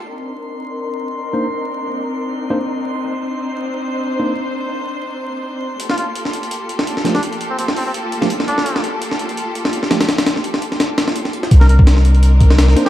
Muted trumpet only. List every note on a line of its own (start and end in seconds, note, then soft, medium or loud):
5.90 5.95 F4 medium
5.98 6.04 F4 medium
7.15 7.21 D4 medium
7.50 7.56 C4 medium
7.59 7.65 C4 medium
7.76 7.83 C4 medium
7.86 7.91 C4 medium
8.48 8.84 D4 medium
11.61 11.66 A#4 medium
11.69 11.76 A#4 medium
12.86 12.89 G4 loud